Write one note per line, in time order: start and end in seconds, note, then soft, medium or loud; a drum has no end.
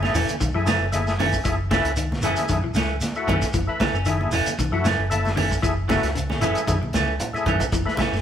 0.00 0.11 F#1 medium
0.00 0.14 A3 medium
0.00 0.15 C#4 medium
0.00 0.14 E4 medium
0.00 0.15 G#4 medium
0.00 snare soft
0.00 high conga medium
0.04 0.14 A3 soft
0.15 0.27 E1 medium
0.15 0.31 E3 medium
0.15 0.28 E3 medium
0.15 0.32 A3 medium
0.15 0.32 C#4 medium
0.15 open hi-hat medium
0.15 low conga medium
0.15 shekere medium
0.29 muted fingered electric bass stroke soft
0.29 closed hi-hat soft
0.29 high conga medium
0.29 shekere medium
0.40 0.53 B1 medium
0.40 0.48 D#3 medium
0.40 kick medium
0.40 closed hi-hat medium
0.40 high conga soft
0.40 low conga medium
0.40 shekere medium
0.54 0.77 F#2 medium
0.54 0.61 E3 medium
0.54 0.69 A3 medium
0.54 0.70 E4 medium
0.54 0.70 G#4 loud
0.67 0.80 C#3 medium
0.67 0.83 E3 medium
0.67 0.83 A3 medium
0.67 0.84 C#4 medium
0.67 snare medium
0.67 closed hi-hat soft
0.67 shekere medium
0.80 1.37 F#1 medium
0.92 1.13 A3 medium
0.92 1.14 E4 medium
0.92 1.14 G#4 loud
0.92 closed hi-hat medium
0.92 high conga medium
0.92 shekere medium
1.07 snare soft
1.07 shekere soft
1.19 1.33 D#3 medium
1.19 1.35 E3 medium
1.19 1.36 A3 medium
1.19 1.36 C#4 medium
1.19 open hi-hat medium
1.19 high conga medium
1.19 low conga medium
1.19 shekere soft
1.33 kick medium
1.33 shekere medium
1.44 1.81 F#1 medium
1.44 1.59 E3 medium
1.44 1.56 A3 medium
1.44 1.56 E4 medium
1.44 1.56 G#4 medium
1.44 kick medium
1.44 closed hi-hat medium
1.44 high conga soft
1.44 shekere medium
1.71 1.84 C#3 medium
1.71 1.87 E3 medium
1.71 1.92 A3 medium
1.71 1.88 A3 medium
1.71 1.88 C#4 medium
1.71 1.92 E4 medium
1.71 1.93 B4 medium
1.71 kick medium
1.71 snare medium
1.71 closed hi-hat medium
1.71 high conga loud
1.71 shekere soft
1.84 2.23 C#2 medium
1.84 closed hi-hat medium
1.84 shekere soft
1.96 2.11 D#3 medium
1.96 closed hi-hat medium
1.96 high conga soft
1.96 shekere medium
2.12 snare soft
2.12 high conga medium
2.22 2.36 F#1 medium
2.22 2.37 E3 medium
2.22 2.40 E3 medium
2.22 2.60 A3 medium
2.22 2.40 A3 medium
2.22 2.40 C#4 medium
2.22 2.60 E4 medium
2.22 2.61 G#4 medium
2.22 closed hi-hat medium
2.22 low conga medium
2.22 shekere medium
2.36 closed hi-hat soft
2.36 high conga medium
2.36 shekere medium
2.48 2.62 F#2 medium
2.48 2.57 D#3 medium
2.48 kick medium
2.48 closed hi-hat medium
2.48 high conga soft
2.48 shekere medium
2.62 2.74 B1 medium
2.62 2.70 E3 medium
2.74 2.98 C#2 medium
2.74 2.89 C#3 medium
2.74 2.92 E3 medium
2.74 2.92 A3 medium
2.74 2.93 C#4 medium
2.74 snare medium
2.74 closed hi-hat medium
2.74 shekere medium
3.01 snare soft
3.01 closed hi-hat medium
3.01 high conga medium
3.01 shekere medium
3.15 3.36 A3 medium
3.15 3.36 E4 medium
3.15 3.37 F#4 medium
3.15 shekere soft
3.27 3.40 F#2 medium
3.27 3.42 D#3 medium
3.27 3.44 E3 medium
3.27 3.44 A3 medium
3.27 3.45 C#4 medium
3.27 kick medium
3.27 closed hi-hat soft
3.27 high conga medium
3.27 low conga medium
3.27 shekere soft
3.42 kick medium
3.42 snare soft
3.42 closed hi-hat soft
3.42 shekere medium
3.53 3.66 F#1 medium
3.53 3.67 E3 medium
3.53 kick medium
3.53 closed hi-hat medium
3.53 high conga soft
3.53 low conga medium
3.53 shekere medium
3.67 3.82 A3 medium
3.67 3.83 E4 medium
3.67 3.83 B4 medium
3.80 3.94 C#3 medium
3.80 3.94 E3 medium
3.80 3.94 A3 medium
3.80 3.93 C#4 medium
3.80 muted fingered electric bass stroke soft
3.80 kick medium
3.80 snare medium
3.80 closed hi-hat soft
3.80 high conga medium
3.80 shekere soft
3.93 4.28 F#1 medium
3.93 4.09 C#4 soft
3.93 shekere soft
4.05 4.20 D#3 medium
4.05 4.32 A3 medium
4.05 4.32 E4 medium
4.05 4.33 G#4 medium
4.05 closed hi-hat medium
4.05 high conga soft
4.05 shekere medium
4.21 high conga medium
4.31 4.44 E1 medium
4.31 4.49 E3 medium
4.31 4.46 E3 medium
4.31 4.49 A3 medium
4.31 4.50 C#4 medium
4.31 open hi-hat medium
4.31 low conga medium
4.31 shekere medium
4.46 muted fingered electric bass stroke soft
4.46 closed hi-hat soft
4.46 high conga medium
4.46 shekere medium
4.59 4.70 B1 medium
4.59 4.67 D#3 medium
4.59 kick medium
4.59 closed hi-hat medium
4.59 high conga soft
4.59 low conga medium
4.59 shekere medium
4.71 4.95 F#2 medium
4.71 4.79 E3 medium
4.71 4.87 A3 medium
4.71 4.87 E4 medium
4.71 4.88 F#4 loud
4.84 4.98 C#3 medium
4.84 5.01 E3 medium
4.84 5.01 A3 medium
4.84 5.02 C#4 medium
4.84 snare medium
4.84 closed hi-hat soft
4.84 shekere medium
4.98 5.55 F#1 medium
5.10 5.31 A3 medium
5.10 5.32 E4 medium
5.10 5.32 A4 loud
5.10 closed hi-hat medium
5.10 high conga medium
5.10 shekere medium
5.25 snare soft
5.25 high conga medium
5.25 shekere soft
5.36 5.50 D#3 medium
5.36 5.53 E3 medium
5.36 5.54 A3 medium
5.36 5.54 C#4 medium
5.36 open hi-hat medium
5.36 high conga medium
5.36 low conga medium
5.36 shekere soft
5.51 kick medium
5.51 shekere medium
5.62 5.99 F#1 medium
5.62 5.76 E3 medium
5.62 5.74 A3 medium
5.62 5.74 E4 medium
5.62 5.74 G#4 medium
5.62 kick medium
5.62 closed hi-hat medium
5.62 high conga soft
5.62 low conga medium
5.62 shekere medium
5.88 6.03 C#3 medium
5.88 6.05 E3 medium
5.88 6.05 A3 medium
5.88 6.10 A3 medium
5.88 6.06 C#4 medium
5.88 6.10 E4 medium
5.88 6.11 F#4 medium
5.88 kick medium
5.88 snare medium
5.88 closed hi-hat soft
5.88 high conga loud
5.88 shekere soft
6.03 6.41 C#2 medium
6.03 snare soft
6.03 closed hi-hat medium
6.03 shekere soft
6.15 6.29 C#3 medium
6.15 closed hi-hat medium
6.15 high conga soft
6.15 shekere medium
6.30 6.41 A3 soft
6.30 6.42 C#4 medium
6.30 snare soft
6.30 high conga medium
6.41 6.54 F#1 medium
6.41 6.55 E3 medium
6.41 6.58 E3 medium
6.41 6.78 A3 medium
6.41 6.58 A3 medium
6.41 6.59 C#4 medium
6.41 6.78 E4 medium
6.41 6.79 G#4 medium
6.41 closed hi-hat medium
6.41 low conga medium
6.41 shekere medium
6.55 closed hi-hat soft
6.55 shekere medium
6.67 6.80 F#2 medium
6.67 6.75 D#3 medium
6.67 kick medium
6.67 closed hi-hat medium
6.67 high conga medium
6.67 shekere medium
6.82 6.92 B1 medium
6.82 muted clean electric guitar stroke medium
6.82 high conga medium
6.93 7.18 C#2 medium
6.93 7.07 C#3 medium
6.93 7.10 E3 medium
6.93 7.11 A3 medium
6.93 7.11 C#4 medium
6.93 snare medium
6.93 closed hi-hat medium
6.93 high conga medium
6.93 shekere medium
7.20 closed hi-hat medium
7.20 low conga medium
7.20 shekere medium
7.33 7.54 A3 medium
7.33 7.54 E4 medium
7.33 7.55 G#4 loud
7.33 low conga medium
7.33 shekere soft
7.46 7.59 F#2 medium
7.46 7.60 D#3 medium
7.46 7.63 E3 medium
7.46 7.63 A3 medium
7.46 7.63 C#4 medium
7.46 kick medium
7.46 closed hi-hat soft
7.46 low conga medium
7.46 shekere soft
7.60 kick medium
7.60 closed hi-hat medium
7.60 low conga medium
7.60 shekere medium
7.72 7.85 F#1 medium
7.72 7.86 E3 medium
7.72 kick loud
7.72 closed hi-hat medium
7.72 high conga soft
7.72 low conga medium
7.72 shekere medium
7.86 8.00 A3 medium
7.86 8.01 E4 medium
7.86 8.01 B4 medium
7.86 snare soft
7.97 8.13 C#3 medium
7.97 8.15 E3 medium
7.97 8.15 A3 medium
7.97 8.15 C#4 medium
7.97 muted fingered electric bass stroke soft
7.97 kick medium
7.97 snare medium
7.97 closed hi-hat medium
7.97 high conga medium
7.97 shekere soft
8.12 8.22 F#1 medium
8.12 snare soft
8.12 shekere soft